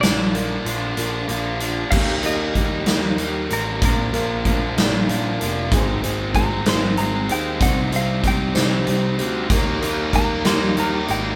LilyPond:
<<
  \new Staff \with { instrumentName = "Clean electric guitar" } { \time 6/8 \key ees \major \tempo 4. = 63 d''2~ d''8 r8 | f''8 ees''4. c''8 bes'8 | bes'2 r4 | r4 bes''8 c'''8 bes''8 g''8 |
fis''8 f''8 g''8 r4. | r4 bes''8 c'''8 bes''8 g''8 | }
  \new Staff \with { instrumentName = "Steel-string acoustic guitar" } { \time 6/8 \key ees \major bes,8 bes'8 f'8 bes'8 f'8 d'8 | <ees bes ees' g' bes'>8 <ees' g' bes'>8 <bes ees' g' bes'>8 <ees bes ees' g' bes'>4 <ees' g' bes'>8 | <bes, f bes d' f' bes'>8 <bes d' f' bes'>8 <bes d' f' bes'>8 <bes, f bes d' f' bes'>4 <bes d' f' bes'>8 | <aes bes ees' aes' c''>8 <ees' aes' c''>8 <bes ees' aes' c''>8 <aes bes ees' aes' c''>4 <ees' aes' c''>8 |
<c g c' ees' g' c''>8 <c' ees' g' c''>8 <c' ees' g' c''>8 <c g c' ees' g' c''>4 <c' ees' g' c''>8 | <ees bes ees' g' bes'>8 <ees' g' bes'>8 <bes ees' g' bes'>8 <ees bes ees' g' bes'>4 <ees' g' bes'>8 | }
  \new Staff \with { instrumentName = "Distorted electric guitar" } { \time 6/8 \key ees \major <bes, d f bes d'>8 <f bes d'>8 <d f bes d'>8 <f bes d'>8 <d f bes d'>8 <f bes d'>8 | <ees g bes ees'>8 <g bes ees'>8 <ees g bes ees'>8 <g bes ees'>8 <ees g bes ees'>8 <g bes ees'>8 | <bes, d f bes d'>8 <f bes d'>8 <d f bes d'>8 <f bes d'>8 <d f bes d'>8 <f bes d'>8 | <aes, ees aes c' ees'>8 <aes c' ees'>8 <ees aes c' ees'>8 <aes c' ees'>8 <ees aes c' ees'>8 <aes c' ees'>8 |
<c g c' ees'>8 <g c' ees'>8 <c g c' ees'>8 <g c' ees'>8 <c g c' ees'>8 <g c' ees'>8 | <ees g bes ees'>8 <g bes ees'>8 <ees g bes ees'>8 <g bes ees'>8 <ees g bes ees'>8 <g bes ees'>8 | }
  \new Staff \with { instrumentName = "Overdriven electric guitar" } { \time 6/8 \key ees \major r2. | r2. | r2. | r2. |
r2. | <ees g bes ees'>8 <g bes ees'>8 <ees g bes ees'>8 <g bes ees'>8 <ees g bes ees'>8 <g bes ees'>8 | }
  \new Staff \with { instrumentName = "Picked electric bass" } { \clef bass \time 6/8 \key ees \major bes,,4 bes,,8 bes,,8 bes,,4 | ees,8 ees,8 ees,8 ees,8 ees,8 a,,8 | bes,,8 bes,,8 bes,,8 bes,,8 bes,,8 f,,8 | aes,,8 aes,,8 aes,,8 aes,,8 aes,,8 ees,8 |
c,8 c,8 c,8 c,8 c,8 d,8 | ees,8 ees,8 ees,8 ees,8 ees,8 aes,,8 | }
  \new DrumStaff \with { instrumentName = "Drums" } \drummode { \time 6/8 <hh sn>8 hh8 hh8 hh8 hh8 hh8 | <cymc bd>8 hh8 <hh bd>8 <hh sn>8 hh8 hh8 | <hh bd>8 hh8 <hh bd>8 <hh sn>8 hh8 hh8 | <hh bd>8 hh8 <hh bd>8 <hh sn>8 hh8 hh8 |
<hh bd>8 hh8 <hh bd>8 <hh sn>8 hh8 hh8 | <hh bd>8 hh8 <hh bd>8 <hh sn>8 hh8 hh8 | }
>>